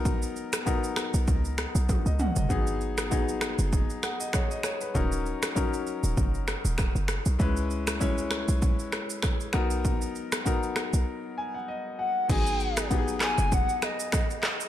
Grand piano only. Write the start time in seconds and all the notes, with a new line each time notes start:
Already playing: F#3 B3 D#4 A#4
0.65 F#3 B3 D#4 A#4
2.06 D#5
2.20 F#5
2.36 D#5
2.49 F#3 B3 D#4 G#4
3.10 F#3 B3 D#4 G#4
4.03 F#5
4.20 D#5
4.34 C#5
4.51 D#5
4.64 C#5
4.81 B4
4.94 F#3 C#4 D#4 A#4
5.55 F#3 C#4 D#4 A#4
7.39 G#3 C#4 E4 B4
8.00 G#3 C#4 E4 C#5
9.53 F#3 B3 D#4 A#4
10.45 F#3 B3 D#4 A#4
11.38 G#5
11.54 F#5
11.68 D#5
11.99 F#5
12.28 F#3 B3 D#4 G#4
12.89 F#3 B3 D#4 G4
12.98 G#4